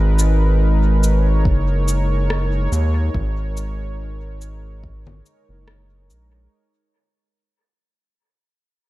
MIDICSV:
0, 0, Header, 1, 4, 480
1, 0, Start_track
1, 0, Key_signature, 5, "minor"
1, 0, Tempo, 845070
1, 1786, Time_signature, 4, 2, 24, 8
1, 5053, End_track
2, 0, Start_track
2, 0, Title_t, "Analog synth pad"
2, 0, Program_c, 0, 89
2, 0, Note_on_c, 0, 56, 70
2, 0, Note_on_c, 0, 63, 71
2, 0, Note_on_c, 0, 70, 93
2, 0, Note_on_c, 0, 71, 71
2, 613, Note_on_c, 0, 73, 74
2, 642, Note_off_c, 0, 71, 0
2, 3704, Note_off_c, 0, 56, 0
2, 3706, Note_off_c, 0, 70, 0
2, 3707, Note_off_c, 0, 63, 0
2, 3733, Note_off_c, 0, 73, 0
2, 5053, End_track
3, 0, Start_track
3, 0, Title_t, "Analog synth bass"
3, 0, Program_c, 1, 38
3, 0, Note_on_c, 1, 32, 104
3, 825, Note_on_c, 1, 30, 78
3, 833, Note_off_c, 1, 32, 0
3, 1524, Note_off_c, 1, 30, 0
3, 1545, Note_on_c, 1, 39, 102
3, 1759, Note_off_c, 1, 39, 0
3, 1787, Note_on_c, 1, 32, 105
3, 2966, Note_off_c, 1, 32, 0
3, 3119, Note_on_c, 1, 30, 86
3, 3467, Note_on_c, 1, 34, 89
3, 3475, Note_off_c, 1, 30, 0
3, 3680, Note_off_c, 1, 34, 0
3, 5053, End_track
4, 0, Start_track
4, 0, Title_t, "Drums"
4, 106, Note_on_c, 9, 69, 52
4, 163, Note_off_c, 9, 69, 0
4, 587, Note_on_c, 9, 69, 50
4, 644, Note_off_c, 9, 69, 0
4, 825, Note_on_c, 9, 36, 98
4, 882, Note_off_c, 9, 36, 0
4, 1068, Note_on_c, 9, 69, 52
4, 1125, Note_off_c, 9, 69, 0
4, 1307, Note_on_c, 9, 37, 85
4, 1364, Note_off_c, 9, 37, 0
4, 1548, Note_on_c, 9, 69, 53
4, 1605, Note_off_c, 9, 69, 0
4, 1786, Note_on_c, 9, 36, 104
4, 1843, Note_off_c, 9, 36, 0
4, 2028, Note_on_c, 9, 69, 53
4, 2085, Note_off_c, 9, 69, 0
4, 2507, Note_on_c, 9, 69, 52
4, 2564, Note_off_c, 9, 69, 0
4, 2746, Note_on_c, 9, 36, 104
4, 2803, Note_off_c, 9, 36, 0
4, 2878, Note_on_c, 9, 64, 82
4, 2935, Note_off_c, 9, 64, 0
4, 2986, Note_on_c, 9, 69, 53
4, 3043, Note_off_c, 9, 69, 0
4, 3224, Note_on_c, 9, 37, 92
4, 3281, Note_off_c, 9, 37, 0
4, 3466, Note_on_c, 9, 69, 56
4, 3523, Note_off_c, 9, 69, 0
4, 5053, End_track
0, 0, End_of_file